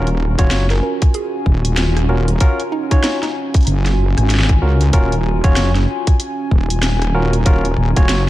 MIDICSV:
0, 0, Header, 1, 6, 480
1, 0, Start_track
1, 0, Key_signature, -6, "minor"
1, 0, Tempo, 631579
1, 1831, Time_signature, 4, 2, 24, 8
1, 6305, End_track
2, 0, Start_track
2, 0, Title_t, "Analog synth pad"
2, 0, Program_c, 0, 89
2, 0, Note_on_c, 0, 61, 83
2, 0, Note_on_c, 0, 65, 75
2, 0, Note_on_c, 0, 66, 75
2, 0, Note_on_c, 0, 80, 93
2, 6305, Note_off_c, 0, 61, 0
2, 6305, Note_off_c, 0, 65, 0
2, 6305, Note_off_c, 0, 66, 0
2, 6305, Note_off_c, 0, 80, 0
2, 6305, End_track
3, 0, Start_track
3, 0, Title_t, "Tine electric piano"
3, 0, Program_c, 1, 4
3, 294, Note_on_c, 1, 61, 85
3, 294, Note_on_c, 1, 65, 76
3, 294, Note_on_c, 1, 66, 76
3, 294, Note_on_c, 1, 73, 94
3, 500, Note_off_c, 1, 61, 0
3, 500, Note_off_c, 1, 65, 0
3, 500, Note_off_c, 1, 66, 0
3, 500, Note_off_c, 1, 73, 0
3, 1590, Note_on_c, 1, 61, 76
3, 1590, Note_on_c, 1, 65, 67
3, 1590, Note_on_c, 1, 66, 68
3, 1590, Note_on_c, 1, 70, 80
3, 1745, Note_off_c, 1, 61, 0
3, 1745, Note_off_c, 1, 65, 0
3, 1745, Note_off_c, 1, 66, 0
3, 1745, Note_off_c, 1, 70, 0
3, 1828, Note_on_c, 1, 61, 93
3, 1828, Note_on_c, 1, 65, 83
3, 1828, Note_on_c, 1, 70, 103
3, 1829, Note_on_c, 1, 66, 87
3, 1984, Note_off_c, 1, 61, 0
3, 1984, Note_off_c, 1, 65, 0
3, 1984, Note_off_c, 1, 66, 0
3, 1984, Note_off_c, 1, 70, 0
3, 2213, Note_on_c, 1, 73, 91
3, 2214, Note_on_c, 1, 61, 82
3, 2214, Note_on_c, 1, 65, 78
3, 2214, Note_on_c, 1, 66, 78
3, 2420, Note_off_c, 1, 61, 0
3, 2420, Note_off_c, 1, 65, 0
3, 2420, Note_off_c, 1, 66, 0
3, 2420, Note_off_c, 1, 73, 0
3, 3509, Note_on_c, 1, 65, 68
3, 3509, Note_on_c, 1, 66, 68
3, 3510, Note_on_c, 1, 61, 72
3, 3510, Note_on_c, 1, 70, 84
3, 3665, Note_off_c, 1, 61, 0
3, 3665, Note_off_c, 1, 65, 0
3, 3665, Note_off_c, 1, 66, 0
3, 3665, Note_off_c, 1, 70, 0
3, 3748, Note_on_c, 1, 61, 91
3, 3748, Note_on_c, 1, 66, 85
3, 3748, Note_on_c, 1, 70, 105
3, 3749, Note_on_c, 1, 65, 85
3, 3904, Note_off_c, 1, 61, 0
3, 3904, Note_off_c, 1, 65, 0
3, 3904, Note_off_c, 1, 66, 0
3, 3904, Note_off_c, 1, 70, 0
3, 4133, Note_on_c, 1, 61, 84
3, 4133, Note_on_c, 1, 66, 80
3, 4134, Note_on_c, 1, 65, 76
3, 4134, Note_on_c, 1, 73, 96
3, 4340, Note_off_c, 1, 61, 0
3, 4340, Note_off_c, 1, 65, 0
3, 4340, Note_off_c, 1, 66, 0
3, 4340, Note_off_c, 1, 73, 0
3, 5430, Note_on_c, 1, 61, 74
3, 5430, Note_on_c, 1, 65, 68
3, 5430, Note_on_c, 1, 66, 70
3, 5430, Note_on_c, 1, 70, 83
3, 5585, Note_off_c, 1, 61, 0
3, 5585, Note_off_c, 1, 65, 0
3, 5585, Note_off_c, 1, 66, 0
3, 5585, Note_off_c, 1, 70, 0
3, 5670, Note_on_c, 1, 61, 91
3, 5670, Note_on_c, 1, 65, 87
3, 5670, Note_on_c, 1, 66, 85
3, 5670, Note_on_c, 1, 70, 102
3, 5825, Note_off_c, 1, 61, 0
3, 5825, Note_off_c, 1, 65, 0
3, 5825, Note_off_c, 1, 66, 0
3, 5825, Note_off_c, 1, 70, 0
3, 6054, Note_on_c, 1, 61, 84
3, 6054, Note_on_c, 1, 65, 77
3, 6054, Note_on_c, 1, 66, 79
3, 6054, Note_on_c, 1, 73, 93
3, 6260, Note_off_c, 1, 61, 0
3, 6260, Note_off_c, 1, 65, 0
3, 6260, Note_off_c, 1, 66, 0
3, 6260, Note_off_c, 1, 73, 0
3, 6305, End_track
4, 0, Start_track
4, 0, Title_t, "Synth pluck"
4, 0, Program_c, 2, 84
4, 535, Note_on_c, 2, 70, 88
4, 596, Note_off_c, 2, 70, 0
4, 630, Note_on_c, 2, 70, 76
4, 723, Note_off_c, 2, 70, 0
4, 871, Note_on_c, 2, 68, 97
4, 1014, Note_off_c, 2, 68, 0
4, 1588, Note_on_c, 2, 66, 91
4, 1732, Note_off_c, 2, 66, 0
4, 2068, Note_on_c, 2, 63, 91
4, 2162, Note_off_c, 2, 63, 0
4, 2211, Note_on_c, 2, 63, 74
4, 2274, Note_off_c, 2, 63, 0
4, 2305, Note_on_c, 2, 63, 87
4, 2401, Note_off_c, 2, 63, 0
4, 2452, Note_on_c, 2, 63, 77
4, 2515, Note_off_c, 2, 63, 0
4, 6305, End_track
5, 0, Start_track
5, 0, Title_t, "Wobble bass"
5, 0, Program_c, 3, 39
5, 0, Note_on_c, 3, 27, 96
5, 272, Note_off_c, 3, 27, 0
5, 295, Note_on_c, 3, 27, 93
5, 375, Note_off_c, 3, 27, 0
5, 392, Note_on_c, 3, 30, 94
5, 616, Note_off_c, 3, 30, 0
5, 1111, Note_on_c, 3, 27, 94
5, 1815, Note_off_c, 3, 27, 0
5, 2791, Note_on_c, 3, 30, 92
5, 3153, Note_off_c, 3, 30, 0
5, 3177, Note_on_c, 3, 32, 94
5, 3496, Note_off_c, 3, 32, 0
5, 3511, Note_on_c, 3, 37, 96
5, 3736, Note_off_c, 3, 37, 0
5, 3751, Note_on_c, 3, 27, 96
5, 4113, Note_off_c, 3, 27, 0
5, 4136, Note_on_c, 3, 27, 92
5, 4216, Note_off_c, 3, 27, 0
5, 4231, Note_on_c, 3, 30, 97
5, 4456, Note_off_c, 3, 30, 0
5, 4951, Note_on_c, 3, 27, 99
5, 5655, Note_off_c, 3, 27, 0
5, 5672, Note_on_c, 3, 27, 97
5, 5896, Note_off_c, 3, 27, 0
5, 5911, Note_on_c, 3, 27, 98
5, 6033, Note_off_c, 3, 27, 0
5, 6056, Note_on_c, 3, 27, 96
5, 6136, Note_off_c, 3, 27, 0
5, 6151, Note_on_c, 3, 30, 95
5, 6305, Note_off_c, 3, 30, 0
5, 6305, End_track
6, 0, Start_track
6, 0, Title_t, "Drums"
6, 52, Note_on_c, 9, 42, 34
6, 128, Note_off_c, 9, 42, 0
6, 293, Note_on_c, 9, 42, 49
6, 295, Note_on_c, 9, 36, 106
6, 369, Note_off_c, 9, 42, 0
6, 371, Note_off_c, 9, 36, 0
6, 388, Note_on_c, 9, 38, 119
6, 388, Note_on_c, 9, 42, 63
6, 464, Note_off_c, 9, 38, 0
6, 464, Note_off_c, 9, 42, 0
6, 533, Note_on_c, 9, 38, 35
6, 533, Note_on_c, 9, 42, 33
6, 609, Note_off_c, 9, 38, 0
6, 609, Note_off_c, 9, 42, 0
6, 773, Note_on_c, 9, 42, 52
6, 776, Note_on_c, 9, 36, 102
6, 849, Note_off_c, 9, 42, 0
6, 852, Note_off_c, 9, 36, 0
6, 868, Note_on_c, 9, 42, 63
6, 944, Note_off_c, 9, 42, 0
6, 1110, Note_on_c, 9, 36, 61
6, 1186, Note_off_c, 9, 36, 0
6, 1252, Note_on_c, 9, 42, 51
6, 1328, Note_off_c, 9, 42, 0
6, 1348, Note_on_c, 9, 38, 121
6, 1348, Note_on_c, 9, 42, 64
6, 1424, Note_off_c, 9, 38, 0
6, 1424, Note_off_c, 9, 42, 0
6, 1494, Note_on_c, 9, 37, 52
6, 1494, Note_on_c, 9, 42, 35
6, 1570, Note_off_c, 9, 37, 0
6, 1570, Note_off_c, 9, 42, 0
6, 1733, Note_on_c, 9, 42, 49
6, 1809, Note_off_c, 9, 42, 0
6, 1828, Note_on_c, 9, 42, 60
6, 1830, Note_on_c, 9, 36, 111
6, 1904, Note_off_c, 9, 42, 0
6, 1906, Note_off_c, 9, 36, 0
6, 1973, Note_on_c, 9, 42, 33
6, 2049, Note_off_c, 9, 42, 0
6, 2213, Note_on_c, 9, 42, 48
6, 2215, Note_on_c, 9, 36, 101
6, 2289, Note_off_c, 9, 42, 0
6, 2291, Note_off_c, 9, 36, 0
6, 2308, Note_on_c, 9, 38, 111
6, 2308, Note_on_c, 9, 42, 60
6, 2384, Note_off_c, 9, 38, 0
6, 2384, Note_off_c, 9, 42, 0
6, 2454, Note_on_c, 9, 38, 34
6, 2454, Note_on_c, 9, 42, 34
6, 2530, Note_off_c, 9, 38, 0
6, 2530, Note_off_c, 9, 42, 0
6, 2693, Note_on_c, 9, 42, 48
6, 2695, Note_on_c, 9, 36, 103
6, 2709, Note_off_c, 9, 42, 0
6, 2709, Note_on_c, 9, 42, 40
6, 2741, Note_off_c, 9, 42, 0
6, 2741, Note_on_c, 9, 42, 26
6, 2757, Note_off_c, 9, 42, 0
6, 2757, Note_on_c, 9, 42, 22
6, 2771, Note_off_c, 9, 36, 0
6, 2772, Note_off_c, 9, 42, 0
6, 2772, Note_on_c, 9, 42, 18
6, 2788, Note_off_c, 9, 42, 0
6, 2788, Note_on_c, 9, 42, 61
6, 2864, Note_off_c, 9, 42, 0
6, 2932, Note_on_c, 9, 38, 35
6, 2932, Note_on_c, 9, 42, 35
6, 3008, Note_off_c, 9, 38, 0
6, 3008, Note_off_c, 9, 42, 0
6, 3173, Note_on_c, 9, 37, 52
6, 3173, Note_on_c, 9, 42, 48
6, 3249, Note_off_c, 9, 37, 0
6, 3249, Note_off_c, 9, 42, 0
6, 3267, Note_on_c, 9, 38, 52
6, 3267, Note_on_c, 9, 42, 63
6, 3305, Note_off_c, 9, 38, 0
6, 3305, Note_on_c, 9, 38, 68
6, 3341, Note_off_c, 9, 38, 0
6, 3341, Note_on_c, 9, 38, 80
6, 3343, Note_off_c, 9, 42, 0
6, 3377, Note_off_c, 9, 38, 0
6, 3377, Note_on_c, 9, 38, 95
6, 3413, Note_on_c, 9, 42, 36
6, 3415, Note_on_c, 9, 36, 98
6, 3453, Note_off_c, 9, 38, 0
6, 3489, Note_off_c, 9, 42, 0
6, 3491, Note_off_c, 9, 36, 0
6, 3653, Note_on_c, 9, 42, 50
6, 3729, Note_off_c, 9, 42, 0
6, 3748, Note_on_c, 9, 42, 62
6, 3750, Note_on_c, 9, 36, 109
6, 3824, Note_off_c, 9, 42, 0
6, 3826, Note_off_c, 9, 36, 0
6, 3893, Note_on_c, 9, 42, 34
6, 3969, Note_off_c, 9, 42, 0
6, 4134, Note_on_c, 9, 42, 49
6, 4136, Note_on_c, 9, 36, 100
6, 4210, Note_off_c, 9, 42, 0
6, 4212, Note_off_c, 9, 36, 0
6, 4229, Note_on_c, 9, 38, 116
6, 4229, Note_on_c, 9, 42, 63
6, 4305, Note_off_c, 9, 38, 0
6, 4305, Note_off_c, 9, 42, 0
6, 4374, Note_on_c, 9, 38, 33
6, 4374, Note_on_c, 9, 42, 34
6, 4450, Note_off_c, 9, 38, 0
6, 4450, Note_off_c, 9, 42, 0
6, 4614, Note_on_c, 9, 42, 53
6, 4615, Note_on_c, 9, 36, 101
6, 4690, Note_off_c, 9, 42, 0
6, 4691, Note_off_c, 9, 36, 0
6, 4709, Note_on_c, 9, 42, 67
6, 4785, Note_off_c, 9, 42, 0
6, 4951, Note_on_c, 9, 36, 60
6, 5027, Note_off_c, 9, 36, 0
6, 5094, Note_on_c, 9, 42, 53
6, 5170, Note_off_c, 9, 42, 0
6, 5189, Note_on_c, 9, 38, 118
6, 5189, Note_on_c, 9, 42, 66
6, 5265, Note_off_c, 9, 38, 0
6, 5265, Note_off_c, 9, 42, 0
6, 5333, Note_on_c, 9, 37, 55
6, 5333, Note_on_c, 9, 42, 36
6, 5409, Note_off_c, 9, 37, 0
6, 5409, Note_off_c, 9, 42, 0
6, 5573, Note_on_c, 9, 42, 49
6, 5649, Note_off_c, 9, 42, 0
6, 5668, Note_on_c, 9, 42, 67
6, 5671, Note_on_c, 9, 36, 109
6, 5744, Note_off_c, 9, 42, 0
6, 5747, Note_off_c, 9, 36, 0
6, 5814, Note_on_c, 9, 42, 36
6, 5890, Note_off_c, 9, 42, 0
6, 6053, Note_on_c, 9, 42, 52
6, 6056, Note_on_c, 9, 36, 103
6, 6129, Note_off_c, 9, 42, 0
6, 6132, Note_off_c, 9, 36, 0
6, 6150, Note_on_c, 9, 38, 114
6, 6150, Note_on_c, 9, 42, 66
6, 6226, Note_off_c, 9, 38, 0
6, 6226, Note_off_c, 9, 42, 0
6, 6305, End_track
0, 0, End_of_file